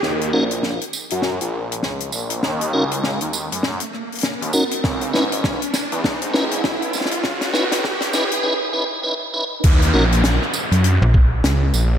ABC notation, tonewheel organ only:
X:1
M:4/4
L:1/8
Q:"Swing 16ths" 1/4=100
K:D#phr
V:1 name="Tonewheel organ"
z [CDFA] z6 | z [CDFA] z4 z [CDFA] | z [CDEB] z3 [CDEB] z2 | z [CDEB] z [CDEB] [CDEB] [CDEB] [CDEB] [CDEB] |
z [CDFA] z6 |]